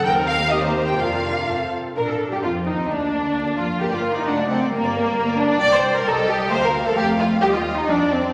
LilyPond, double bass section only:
\new Staff \with { instrumentName = "Double bass section" } { \clef bass \time 2/4 \key bes \major \tempo 4 = 132 ees,2 | f,,4 f,,8 r8 | bes,16 a,8 g,16 f,8 ees,8 | d,4. f,8 |
g,,4 fis,,4 | g,,4 g,,4 | c,4 c,4 | d,4 f,4 |
ees,4 f,4 | }